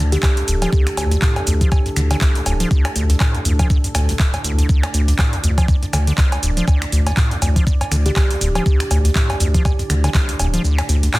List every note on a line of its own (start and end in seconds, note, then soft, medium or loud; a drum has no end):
0.00 0.17 D2 medium
0.00 11.19 A2 medium
0.00 11.19 D3 medium
0.00 11.19 D4 medium
0.00 4.68 A4 medium
0.12 0.18 D3 medium
0.12 0.19 G4 medium
0.12 closed hi-hat medium
0.12 shaker soft
0.23 0.39 C2 loud
0.23 0.32 G4 medium
0.23 kick loud
0.23 clap loud
0.23 cowbell medium
0.23 shaker soft
0.37 0.43 D2 medium
0.37 closed hi-hat medium
0.37 shaker soft
0.48 0.67 D1 medium
0.48 0.55 D2 medium
0.48 open hi-hat loud
0.48 shaker medium
0.62 0.71 F3 medium
0.62 closed hi-hat medium
0.62 cowbell medium
0.62 shaker soft
0.72 0.88 D2 loud
0.72 kick loud
0.72 shaker soft
0.87 0.90 E2 loud
0.87 finger snap medium
0.87 closed hi-hat medium
0.87 shaker soft
0.97 1.05 D2 medium
0.97 1.16 D2 loud
0.97 open hi-hat loud
0.97 cowbell medium
0.97 shaker medium
1.11 1.17 D2 loud
1.11 closed hi-hat medium
1.11 shaker soft
1.22 1.38 A2 medium
1.22 kick loud
1.22 clap loud
1.22 shaker soft
1.36 1.42 D2 medium
1.36 closed hi-hat soft
1.36 cowbell medium
1.36 shaker soft
1.47 1.66 D2 loud
1.47 1.55 F2 medium
1.47 open hi-hat loud
1.47 shaker medium
1.61 1.70 F3 medium
1.61 kick medium
1.61 open hi-hat medium
1.61 shaker soft
1.72 1.79 D2 loud
1.72 kick loud
1.72 cowbell medium
1.72 shaker soft
1.86 1.89 F2 medium
1.86 closed hi-hat soft
1.86 shaker soft
1.96 2.15 D2 medium
1.96 2.01 D3 loud
1.96 finger snap medium
1.96 open hi-hat loud
1.96 shaker medium
2.11 2.17 D3 medium
2.11 closed hi-hat medium
2.11 cowbell medium
2.11 shaker soft
2.21 2.37 C2 loud
2.21 kick loud
2.21 clap loud
2.21 shaker soft
2.35 2.41 D2 medium
2.35 closed hi-hat medium
2.35 shaker soft
2.46 2.65 D1 medium
2.46 2.54 D2 medium
2.46 open hi-hat loud
2.46 cowbell medium
2.46 shaker medium
2.60 2.69 F3 medium
2.60 closed hi-hat medium
2.60 shaker soft
2.71 2.86 D2 loud
2.71 kick loud
2.71 shaker soft
2.85 2.89 E2 loud
2.85 finger snap medium
2.85 closed hi-hat soft
2.85 cowbell medium
2.85 shaker soft
2.96 3.14 D2 loud
2.96 3.03 D2 medium
2.96 open hi-hat loud
2.96 shaker medium
3.10 3.16 D2 loud
3.10 closed hi-hat medium
3.10 shaker soft
3.20 3.36 A2 medium
3.20 kick loud
3.20 clap loud
3.20 cowbell medium
3.20 shaker soft
3.35 3.40 D2 medium
3.35 closed hi-hat soft
3.35 shaker soft
3.45 3.64 D2 loud
3.45 3.53 F2 medium
3.45 open hi-hat loud
3.45 shaker medium
3.59 3.68 F3 medium
3.59 kick medium
3.59 open hi-hat medium
3.59 cowbell medium
3.59 shaker soft
3.70 3.78 D2 loud
3.70 kick loud
3.70 shaker soft
3.84 3.88 F2 medium
3.84 open hi-hat medium
3.84 shaker soft
3.95 3.99 D2 medium
3.95 4.14 D2 medium
3.95 finger snap medium
3.95 open hi-hat loud
3.95 cowbell medium
3.95 shaker medium
4.09 4.12 C2 medium
4.09 closed hi-hat medium
4.09 shaker soft
4.19 4.31 D1 medium
4.19 kick loud
4.19 clap loud
4.19 shaker soft
4.34 4.37 D2 medium
4.34 closed hi-hat medium
4.34 cowbell medium
4.34 shaker soft
4.44 4.52 D2 medium
4.44 4.63 D2 medium
4.44 open hi-hat loud
4.44 shaker medium
4.58 4.67 D2 medium
4.58 closed hi-hat medium
4.58 shaker soft
4.69 4.85 D2 loud
4.69 11.19 D5 medium
4.69 kick loud
4.69 shaker soft
4.83 4.87 E2 loud
4.83 finger snap medium
4.83 closed hi-hat soft
4.83 cowbell medium
4.83 shaker soft
4.94 5.13 D2 loud
4.94 5.02 D2 medium
4.94 open hi-hat loud
4.94 shaker medium
5.08 5.14 D2 loud
5.08 closed hi-hat medium
5.08 shaker soft
5.19 5.34 A2 medium
5.19 kick loud
5.19 clap loud
5.19 cowbell medium
5.19 shaker soft
5.33 5.39 D2 medium
5.33 closed hi-hat soft
5.33 shaker soft
5.44 5.62 D2 loud
5.44 5.51 F2 medium
5.44 open hi-hat loud
5.44 shaker medium
5.58 5.67 F3 medium
5.58 kick medium
5.58 open hi-hat medium
5.58 cowbell medium
5.58 shaker soft
5.68 5.76 D2 loud
5.68 kick loud
5.68 shaker soft
5.83 5.86 F2 medium
5.83 closed hi-hat soft
5.83 shaker soft
5.93 6.12 D2 loud
5.93 5.98 D3 loud
5.93 finger snap medium
5.93 open hi-hat loud
5.93 cowbell medium
5.93 shaker medium
6.07 6.13 D3 medium
6.07 closed hi-hat medium
6.07 shaker soft
6.18 6.34 C2 loud
6.18 kick loud
6.18 clap loud
6.18 shaker soft
6.32 6.38 D2 medium
6.32 closed hi-hat medium
6.32 cowbell medium
6.32 shaker soft
6.43 6.62 D1 medium
6.43 6.51 D2 medium
6.43 open hi-hat loud
6.43 shaker medium
6.57 6.66 F3 medium
6.57 closed hi-hat medium
6.57 shaker soft
6.68 6.83 D2 loud
6.68 kick loud
6.68 cowbell medium
6.68 shaker soft
6.82 6.85 E2 loud
6.82 finger snap medium
6.82 closed hi-hat medium
6.82 shaker soft
6.92 7.11 D2 loud
6.92 7.00 D2 medium
6.92 open hi-hat loud
6.92 shaker medium
7.07 7.12 D2 loud
7.07 closed hi-hat medium
7.07 cowbell medium
7.07 shaker soft
7.17 7.33 A2 medium
7.17 kick loud
7.17 clap loud
7.17 shaker soft
7.31 7.37 D2 medium
7.31 closed hi-hat soft
7.31 shaker soft
7.42 7.61 D2 loud
7.42 7.50 F2 medium
7.42 open hi-hat loud
7.42 cowbell medium
7.42 shaker medium
7.56 7.65 F3 medium
7.56 kick medium
7.56 open hi-hat medium
7.56 shaker soft
7.67 7.75 D2 loud
7.67 kick loud
7.67 shaker soft
7.81 7.84 F2 medium
7.81 open hi-hat medium
7.81 cowbell medium
7.81 shaker soft
7.92 8.10 D2 loud
7.92 7.96 D3 loud
7.92 finger snap medium
7.92 open hi-hat loud
7.92 shaker medium
8.06 8.12 D3 medium
8.06 8.13 G4 medium
8.06 closed hi-hat medium
8.06 shaker soft
8.16 8.32 C2 loud
8.16 8.25 G4 medium
8.16 kick loud
8.16 clap loud
8.16 cowbell medium
8.16 shaker soft
8.30 8.36 D2 medium
8.30 closed hi-hat medium
8.30 shaker soft
8.41 8.60 D1 medium
8.41 8.49 D2 medium
8.41 open hi-hat loud
8.41 shaker medium
8.55 8.64 F3 medium
8.55 closed hi-hat medium
8.55 cowbell medium
8.55 shaker soft
8.66 8.82 D2 loud
8.66 kick loud
8.66 shaker soft
8.80 8.84 E2 loud
8.80 finger snap medium
8.80 closed hi-hat medium
8.80 shaker soft
8.91 8.98 D2 medium
8.91 9.09 D2 loud
8.91 open hi-hat loud
8.91 cowbell medium
8.91 shaker medium
9.05 9.11 D2 loud
9.05 closed hi-hat medium
9.05 shaker soft
9.15 9.31 A2 medium
9.15 kick loud
9.15 clap loud
9.15 shaker soft
9.30 9.35 D2 medium
9.30 closed hi-hat soft
9.30 cowbell medium
9.30 shaker soft
9.40 9.59 D2 medium
9.40 9.48 F2 medium
9.40 open hi-hat loud
9.40 shaker medium
9.54 9.63 F3 medium
9.54 kick medium
9.54 open hi-hat medium
9.54 shaker soft
9.65 9.73 D2 loud
9.65 kick loud
9.65 cowbell medium
9.65 shaker soft
9.79 9.83 F2 medium
9.79 closed hi-hat soft
9.79 shaker soft
9.90 10.09 D2 medium
9.90 9.94 D3 loud
9.90 finger snap medium
9.90 open hi-hat loud
9.90 shaker medium
10.04 10.10 D3 medium
10.04 closed hi-hat medium
10.04 cowbell medium
10.04 shaker soft
10.14 10.30 C2 loud
10.14 kick loud
10.14 clap loud
10.14 shaker soft
10.29 10.35 D2 medium
10.29 closed hi-hat medium
10.29 shaker soft
10.39 10.58 D1 medium
10.39 10.47 D2 medium
10.39 open hi-hat loud
10.39 cowbell medium
10.39 shaker medium
10.54 10.62 F3 medium
10.54 closed hi-hat medium
10.54 shaker soft
10.64 10.80 D2 loud
10.64 shaker medium
10.78 10.82 E2 loud
10.78 finger snap medium
10.78 closed hi-hat medium
10.78 cowbell medium
10.78 shaker soft
10.89 10.97 D2 medium
10.89 11.08 D2 loud
10.89 open hi-hat loud
10.89 shaker medium
11.03 11.09 D2 loud
11.03 closed hi-hat medium
11.03 shaker soft
11.14 11.19 A2 medium
11.14 clap loud
11.14 cowbell medium
11.14 shaker soft